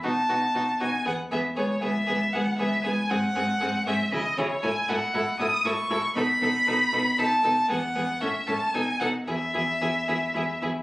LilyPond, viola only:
\new Staff \with { instrumentName = "Viola" } { \time 3/4 \key e \major \tempo 4 = 117 dis'8 dis'8 dis'8 dis'8 b8 b8 | b8 b8 b8 b8 b8 b8 | bis8 bis8 bis8 bis8 e'8 e'8 | e'8 e'8 e'8 e'8 e'8 e'8 |
dis'8 dis'8 dis'8 dis'8 dis'8 dis'8 | b8 b8 cis'8 cis'8 dis'8 dis'8 | e'8 e'8 e'8 e'8 e'8 e'8 | }